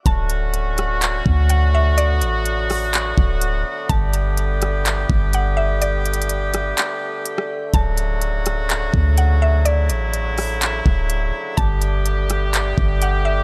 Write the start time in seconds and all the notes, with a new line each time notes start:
0.06 D1 D3 F#3 A3 C#4 F#4 A5, kick, closed hi-hat
0.30 closed hi-hat
0.54 closed hi-hat
0.78 cross-stick, closed hi-hat
1.02 clap, closed hi-hat
1.26 D2, kick
1.49 F#5, closed hi-hat
1.75 E5
1.98 B3 D5, closed hi-hat
2.21 A1, closed hi-hat
2.46 closed hi-hat
2.70 cross-stick, open hi-hat
2.94 clap, closed hi-hat
3.18 D1, kick
3.42 closed hi-hat
3.89 G1 G3 G4 A5, kick, closed hi-hat
4.13 closed hi-hat
4.37 closed hi-hat
4.62 cross-stick, closed hi-hat
4.86 clap, closed hi-hat
5.10 G1, kick
5.33 F#5, closed hi-hat
5.57 E5
5.82 D5, closed hi-hat
6.06 closed hi-hat
6.14 closed hi-hat
6.22 closed hi-hat
6.29 closed hi-hat
6.54 cross-stick, closed hi-hat
6.78 clap, closed hi-hat
7.26 closed hi-hat
7.38 cross-stick
7.73 D1 C#3 F#3 F#4 A5, kick, closed hi-hat
7.98 closed hi-hat
8.22 closed hi-hat
8.46 cross-stick, closed hi-hat
8.70 clap, closed hi-hat
8.94 D2, kick
9.18 F#5, closed hi-hat
9.42 E5
9.65 E4 D5, closed hi-hat
9.90 A1, closed hi-hat
10.13 closed hi-hat
10.38 cross-stick, open hi-hat
10.62 clap, closed hi-hat
10.86 D1, kick
11.10 closed hi-hat
11.57 G1 D3 G3 A3 B3 G4 A5, kick, closed hi-hat
11.82 closed hi-hat
12.06 closed hi-hat
12.30 cross-stick, closed hi-hat
12.54 clap, closed hi-hat
12.78 G1, kick
13.02 F#5, closed hi-hat
13.25 E5